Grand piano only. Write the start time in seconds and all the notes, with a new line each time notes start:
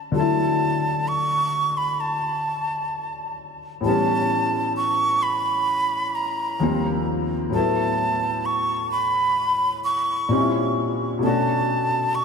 Already playing: F#3 A3 C#4
0.12 D3 F#3
0.17 A3 E4
3.81 A2 E3 G3
3.87 B3 C#4
6.60 D#2 F3 G3 A#3 C4
7.50 A2 F#3
7.54 A3 B3
7.58 E4
10.29 A#2 G3 C4 C#4
10.33 D#4
10.39 E4
11.19 B2 A3
11.23 C#4 D4 F#4